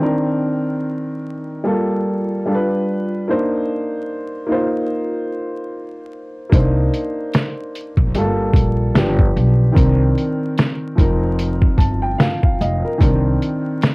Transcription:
0.00 1.59 D#3 medium
0.00 1.60 C4 medium
0.00 1.61 D4 medium
0.00 1.62 A#4 medium
1.64 2.44 G3 medium
1.64 2.46 A#3 medium
1.64 2.46 F4 medium
1.64 2.47 A4 medium
2.46 3.27 G3 medium
2.46 3.27 D4 medium
2.46 3.28 F4 medium
2.46 2.55 A4 medium
2.55 3.32 B4 medium
3.28 4.45 A#3 medium
3.28 4.50 D4 medium
3.28 4.47 D#4 medium
3.28 4.50 C5 medium
4.46 6.47 A#3 medium
4.46 6.48 D#4 medium
4.46 6.48 F4 medium
4.52 6.49 C5 medium
6.49 6.87 C2 loud
6.49 8.10 A#3 medium
6.49 8.11 D4 medium
6.49 8.11 D#4 medium
6.49 kick loud
6.49 closed hi-hat medium
6.55 8.12 C5 medium
6.94 closed hi-hat medium
7.34 snare medium
7.34 closed hi-hat medium
7.75 closed hi-hat medium
7.97 8.12 A#1 medium
7.97 kick medium
8.14 8.49 G1 medium
8.14 8.96 G3 medium
8.14 8.23 A3 medium
8.14 8.97 F4 medium
8.14 8.97 A4 medium
8.14 closed hi-hat medium
8.23 9.00 A#3 medium
8.54 8.89 A#1 medium
8.54 kick medium
8.54 closed hi-hat medium
8.95 9.30 G1 loud
8.95 9.76 F3 medium
8.95 9.77 B3 medium
8.95 9.72 D4 medium
8.95 9.77 G4 medium
8.95 snare loud
8.95 closed hi-hat medium
9.19 kick loud
9.36 9.71 B1 loud
9.36 closed hi-hat medium
9.72 10.96 D#3 medium
9.72 10.95 C4 medium
9.72 10.97 D4 medium
9.72 10.97 A#4 medium
9.76 10.11 C2 loud
9.76 kick loud
9.76 closed hi-hat medium
10.18 closed hi-hat medium
10.58 snare medium
10.58 closed hi-hat medium
10.95 11.68 F1 medium
10.95 12.95 F3 medium
10.95 12.96 C4 medium
10.95 12.97 D#4 medium
10.95 kick loud
10.99 12.19 A#4 medium
10.99 closed hi-hat medium
11.39 closed hi-hat medium
11.62 kick medium
11.77 12.13 G1 medium
11.77 12.01 A5 medium
11.77 kick medium
11.77 closed hi-hat medium
12.02 12.18 G5 medium
12.18 12.41 F5 medium
12.18 snare loud
12.18 closed hi-hat medium
12.43 12.59 F5 medium
12.43 kick loud
12.61 12.81 F1 medium
12.61 12.83 D#5 medium
12.61 12.98 F5 medium
12.61 closed hi-hat medium
12.85 13.02 A#4 medium
12.98 13.36 C2 loud
12.98 13.95 D#3 medium
12.98 13.95 C4 medium
12.98 13.95 D4 medium
12.98 kick loud
12.98 closed hi-hat medium
13.03 13.95 A#4 medium
13.42 closed hi-hat medium
13.82 snare medium
13.82 closed hi-hat medium

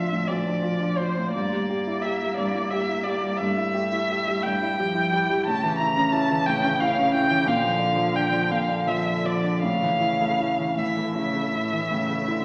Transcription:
0.00 0.29 D2 soft
0.00 0.12 A2 soft
0.00 1.29 F3 soft
0.00 0.46 D4 soft
0.00 0.62 F4 soft
0.00 0.29 E5 medium
0.12 0.40 A2 soft
0.27 1.31 D2 soft
0.27 0.99 D5 medium
0.46 0.74 D4 soft
0.62 0.91 F4 soft
0.81 1.09 D4 soft
0.97 1.27 F4 soft
0.97 1.31 C5 medium
1.17 1.34 A2 soft
1.32 2.37 G2 soft
1.32 3.41 A#3 soft
1.32 2.03 D5 medium
1.52 1.79 G3 soft
1.70 1.97 G4 soft
1.87 2.14 E4 soft
2.02 2.31 G4 soft
2.02 2.36 E5 medium
2.22 2.49 G3 soft
2.37 3.39 G2 soft
2.37 2.72 D5 medium
2.55 2.82 E4 soft
2.71 2.99 G4 soft
2.71 3.05 E5 medium
2.88 3.15 E4 soft
3.03 3.33 G4 soft
3.03 3.38 D5 medium
3.23 3.50 G3 soft
3.37 4.44 G2 soft
3.37 4.44 A3 soft
3.37 4.45 E5 medium
3.57 3.85 E4 soft
3.74 4.03 G4 soft
3.92 4.20 E4 soft
4.11 4.38 G4 soft
4.28 4.55 G3 soft
4.43 5.44 G2 soft
4.43 4.78 G3 soft
4.43 5.45 G5 medium
4.62 4.89 E4 soft
4.76 5.14 F3 soft
4.76 5.06 G4 soft
4.95 5.22 E4 soft
5.12 5.47 E3 soft
5.12 5.40 G4 soft
5.30 5.47 G3 soft
5.45 6.46 A2 soft
5.45 7.48 C#3 soft
5.45 5.78 A5 medium
5.63 5.91 E3 soft
5.78 6.07 E4 soft
5.78 6.14 A#5 medium
5.97 6.25 C#4 soft
6.12 6.41 E4 soft
6.12 6.47 A5 medium
6.31 6.58 E3 soft
6.46 7.44 A2 soft
6.46 6.81 G5 medium
6.64 6.91 C#4 soft
6.80 7.08 E4 soft
6.80 7.14 F5 medium
6.98 7.24 C#4 soft
7.14 7.41 E4 soft
7.14 7.49 G5 medium
7.30 7.47 E3 soft
7.46 8.49 A#2 medium
7.46 8.51 D3 medium
7.46 8.17 F5 medium
7.62 7.90 F3 soft
7.79 8.07 D4 soft
7.96 8.25 F3 soft
8.14 8.43 D4 soft
8.14 8.53 G5 medium
8.32 8.61 F3 soft
8.50 9.58 A#2 soft
8.50 9.63 D3 soft
8.50 8.89 F5 medium
8.69 8.98 D4 soft
8.87 9.17 F3 soft
8.87 9.27 E5 medium
9.05 9.35 D4 soft
9.24 9.54 F3 soft
9.24 9.62 D5 medium
9.44 9.62 D4 soft
9.61 10.75 A2 soft
9.61 10.68 C#3 soft
9.61 10.80 F5 medium
9.83 10.12 E3 soft
10.01 10.31 E4 soft
10.20 10.50 A3 soft
10.40 10.70 E4 soft
10.59 10.88 E3 soft
10.77 11.90 A2 soft
10.77 11.16 E3 medium
10.77 12.45 E5 medium
10.97 11.27 A3 soft
11.14 11.52 C#3 medium
11.14 11.46 E4 soft
11.34 11.64 A3 soft
11.53 11.91 A2 medium
11.53 11.84 E4 soft
11.73 12.03 E3 soft
11.90 12.45 A2 soft
11.90 12.30 C#3 soft
12.10 12.39 A3 soft
12.28 12.45 D3 soft
12.28 12.45 E4 soft

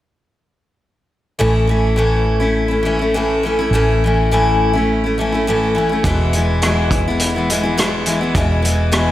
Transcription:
1.39 3.68 A1 medium
1.39 1.69 A2 medium
1.39 1.66 E3 medium
1.39 1.68 A3 medium
1.39 1.68 C#4 medium
1.39 1.70 E4 medium
1.67 1.96 E3 medium
1.67 1.96 A3 medium
1.67 1.97 C#4 medium
1.67 1.97 E4 medium
1.96 2.41 A2 medium
1.96 2.42 E3 medium
1.96 2.41 A3 medium
1.96 2.40 C#4 medium
1.96 2.39 E4 medium
2.40 2.70 A3 soft
2.40 2.70 C#4 soft
2.40 2.67 E4 soft
2.68 2.84 A3 soft
2.68 2.85 C#4 soft
2.68 2.84 E4 soft
2.83 2.99 E3 medium
2.83 3.00 A3 medium
2.83 3.00 C#4 medium
2.83 2.98 E4 medium
2.99 3.15 A3 soft
2.99 3.15 C#4 soft
2.99 3.14 E4 soft
3.14 3.43 A2 medium
3.14 3.42 E3 medium
3.14 3.44 A3 medium
3.14 3.44 C#4 medium
3.14 3.45 E4 medium
3.43 3.58 E3 medium
3.43 3.59 A3 medium
3.43 3.59 C#4 medium
3.43 3.58 E4 medium
3.59 3.73 A3 soft
3.59 3.74 C#4 soft
3.59 3.73 E4 medium
3.71 5.99 A1 medium
3.71 4.02 A2 medium
3.71 4.02 E3 medium
3.71 4.02 A3 medium
3.75 4.03 C#4 medium
3.75 4.03 E4 medium
4.04 4.31 E3 medium
4.04 4.32 A3 medium
4.04 4.32 C#4 medium
4.04 4.33 E4 medium
4.31 4.74 A2 medium
4.31 4.74 E3 medium
4.31 4.75 A3 medium
4.31 4.74 C#4 medium
4.31 4.72 E4 medium
4.73 5.03 C#4 soft
4.73 5.02 E4 medium
4.77 5.04 A3 soft
5.04 5.18 A3 soft
5.04 5.19 C#4 soft
5.04 5.17 E4 soft
5.18 5.32 E3 medium
5.18 5.32 A3 medium
5.18 5.33 C#4 medium
5.18 5.31 E4 medium
5.32 5.47 A3 soft
5.32 5.47 C#4 soft
5.32 5.46 E4 soft
5.47 5.75 A2 medium
5.47 5.74 E3 medium
5.47 5.75 A3 medium
5.47 5.76 C#4 medium
5.47 5.77 E4 medium
5.75 5.89 E3 medium
5.75 5.90 A3 medium
5.75 5.91 C#4 medium
5.75 5.88 E4 medium
5.89 6.05 A3 soft
5.89 6.05 C#4 soft
5.89 6.04 E4 soft
6.04 8.30 E1 medium
6.04 6.33 E2 medium
6.04 6.33 B2 medium
6.04 6.33 E3 medium
6.04 6.34 G#3 medium
6.04 6.34 B3 medium
6.04 6.34 E4 medium
6.04 kick medium
6.04 closed hi-hat medium
6.33 6.62 E3 medium
6.33 6.63 G#3 medium
6.33 6.63 B3 medium
6.33 closed hi-hat soft
6.38 6.64 E4 medium
6.62 7.06 E2 medium
6.62 7.06 B2 medium
6.62 7.06 E3 medium
6.62 7.06 G#3 medium
6.62 7.07 B3 medium
6.62 7.06 E4 medium
6.62 cross-stick medium
6.62 closed hi-hat medium
6.91 kick medium
6.91 closed hi-hat medium
7.08 7.36 E3 soft
7.08 7.36 G#3 soft
7.08 7.35 B3 medium
7.08 7.34 E4 medium
7.20 closed hi-hat medium
7.35 7.49 E3 soft
7.35 7.50 G#3 soft
7.35 7.49 B3 soft
7.35 7.49 E4 soft
7.50 7.63 E3 medium
7.50 7.64 G#3 medium
7.50 7.62 B3 medium
7.50 7.62 E4 medium
7.50 closed hi-hat medium
7.63 7.77 E3 soft
7.63 7.77 G#3 soft
7.63 7.77 B3 soft
7.63 7.77 E4 medium
7.77 8.06 E2 medium
7.77 8.06 B2 medium
7.77 8.05 E3 medium
7.77 8.06 G#3 medium
7.77 8.07 B3 medium
7.77 8.07 E4 medium
7.77 cross-stick medium
7.77 closed hi-hat medium
8.06 8.20 E3 medium
8.06 8.21 G#3 medium
8.06 8.20 B3 medium
8.06 8.19 E4 medium
8.06 closed hi-hat medium
8.21 8.35 E3 soft
8.21 8.36 G#3 soft
8.21 8.35 B3 soft
8.21 8.35 E4 soft
8.35 9.12 E1 medium
8.35 8.64 E2 medium
8.35 8.64 B2 medium
8.35 8.61 E3 medium
8.35 8.63 G#3 medium
8.35 8.64 B3 medium
8.35 8.65 E4 medium
8.35 kick medium
8.35 closed hi-hat medium
8.62 8.91 E3 medium
8.62 8.92 G#3 medium
8.62 8.92 B3 medium
8.62 8.93 E4 medium
8.62 closed hi-hat medium
8.92 9.12 E2 medium
8.92 9.12 B2 medium
8.92 9.12 E3 medium
8.92 9.12 G#3 medium
8.92 9.12 B3 medium
8.92 9.12 E4 medium
8.92 cross-stick medium
8.92 closed hi-hat medium

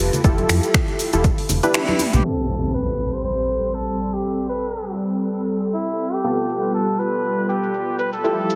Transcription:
0.00 0.22 F4 medium
0.00 0.22 G4 medium
0.00 0.22 A4 medium
0.00 0.22 B4 medium
0.13 closed hi-hat medium
0.13 low conga medium
0.13 cabasa soft
0.24 0.44 F1 loud
0.24 1.10 E4 medium
0.24 1.10 F4 medium
0.24 1.10 G4 medium
0.24 1.10 A4 loud
0.24 kick loud
0.24 closed hi-hat medium
0.24 cabasa soft
0.38 closed hi-hat soft
0.38 high conga medium
0.49 0.60 F2 medium
0.49 finger snap medium
0.49 open hi-hat loud
0.49 cabasa medium
0.63 closed hi-hat medium
0.63 cabasa soft
0.74 finger snap loud
0.74 kick loud
0.74 closed hi-hat medium
0.74 cabasa soft
0.88 closed hi-hat soft
0.99 open hi-hat loud
0.99 cabasa medium
1.13 1.31 E1 medium
1.13 1.23 E4 medium
1.13 1.23 F4 medium
1.13 1.23 G4 medium
1.13 1.23 A4 medium
1.13 closed hi-hat soft
1.13 cabasa medium
1.24 kick loud
1.24 closed hi-hat medium
1.24 cabasa soft
1.38 open hi-hat medium
1.49 1.60 E1 medium
1.49 open hi-hat medium
1.49 low conga medium
1.49 cabasa medium
1.63 1.72 D4 medium
1.63 1.72 E4 medium
1.63 1.72 G4 medium
1.63 1.72 B4 loud
1.63 closed hi-hat medium
1.63 cabasa medium
1.74 2.22 D4 medium
1.74 2.22 E4 medium
1.74 2.15 E4 medium
1.74 finger snap loud
1.74 closed hi-hat medium
1.74 high tom medium
1.74 cabasa soft
1.88 closed hi-hat soft
1.88 high tom medium
1.88 high conga medium
1.99 open hi-hat loud
1.99 mid tom medium
1.99 high conga medium
1.99 cabasa medium
2.13 2.22 B1 loud
2.13 2.26 G4 medium
2.13 closed hi-hat medium
2.13 mid tom medium
2.13 low conga medium
2.13 cabasa soft
2.24 6.20 G3 medium
2.24 6.22 C4 medium
2.24 6.20 C4 medium
2.24 6.22 G4 medium
2.24 6.22 A4 medium
2.24 8.55 A4 medium
2.24 2.74 A4 loud
2.24 4.22 B5 medium
2.24 impact medium
2.74 3.15 B4 loud
3.13 3.24 C5 medium
3.24 3.76 C5 loud
3.74 4.15 A4 medium
4.13 4.49 G4 medium
4.49 4.96 B4 medium
5.74 6.15 E4 medium
6.13 6.74 G4 loud
6.24 8.55 G3 medium
6.24 8.22 B3 medium
6.24 8.22 F4 medium
6.24 8.22 G4 medium
6.24 8.22 A4 medium
6.24 8.22 B4 medium
6.24 cabasa soft
6.49 cabasa medium
6.64 cabasa medium
6.74 7.01 A4 loud
6.74 cabasa soft
6.99 7.48 B4 loud
6.99 cabasa medium
7.14 cabasa medium
7.24 cabasa soft
7.49 7.96 G4 medium
7.49 cabasa medium
7.63 cabasa soft
7.74 cabasa soft
7.99 8.12 B4 loud
7.99 cabasa medium
8.13 8.55 A4 medium
8.13 cabasa soft
8.24 8.55 F3 medium
8.24 8.55 E4 medium
8.24 8.55 F4 medium
8.24 8.55 G4 medium
8.24 8.55 A4 medium
8.24 8.55 E5 medium
8.24 cabasa soft
8.50 cabasa medium

